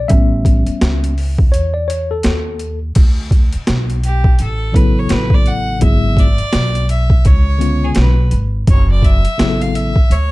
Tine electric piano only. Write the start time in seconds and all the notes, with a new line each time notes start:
0.08 G3 B3 C#4 E5
1.52 C#5
1.74 D5
1.88 C#5
2.11 A4
4.72 C#3 F#3 B3 E4 A4
5.79 C#3 F#3 B3 E4 G#4
7.58 D3 G#3 B3 C#4 F4
9.38 C#3 F#3 B3 E4 G#4
9.48 A4